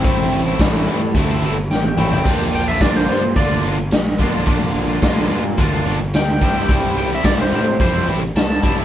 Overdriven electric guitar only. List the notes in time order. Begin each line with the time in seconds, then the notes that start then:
0.05 A2 E3 A3 C4 E4
0.47 A3 C4 E4
0.60 A2 E3 A3 C4 E4
0.88 E3 A3 C4 E4
1.02 muted overdriven electric guitar stroke
1.15 A2 E3 A3 C4 E4
1.29 A3 C4 E4
1.43 E3 A3 C4 E4
1.57 muted overdriven electric guitar stroke
1.98 E3 A3 C4 E4
2.12 A3 C4 E4
2.27 A#2 D3 A#3 D4 F4
2.68 A#3 D4 F4
2.81 A#2 D3 A#3 D4 F4
3.09 D3 A#3 D4 F4
3.24 muted overdriven electric guitar stroke
3.37 A#2 D3 A#3 D4 F4
3.51 A#3 D4 F4
3.65 D3 A#3 D4 F4
3.79 muted overdriven electric guitar stroke
4.20 D3 A#3 D4 F4
4.34 A#3 D4 F4
4.47 A#2 D3 A#3 D4 F4
4.88 A#3 D4 F4
5.02 A#2 D3 A#3 D4 F4
5.31 D3 A#3 D4 F4
5.45 muted overdriven electric guitar stroke
5.57 A#2 D3 A#3 D4 F4
5.72 A#3 D4 F4
5.86 D3 A#3 D4 F4
6.00 muted overdriven electric guitar stroke
6.42 C3 E3 G3 C4 E4
6.56 G3 C4 E4
6.70 C3 E3 G3 C4 E4
7.11 G3 C4 E4
7.24 C3 E3 G3 C4 E4
7.52 E3 G3 C4 E4
7.67 muted overdriven electric guitar stroke
7.80 C3 E3 G3 C4 E4
7.95 G3 C4 E4
8.07 E3 G3 C4 E4
8.23 muted overdriven electric guitar stroke
8.64 E3 G3 C4 E4
8.78 G3 C4 E4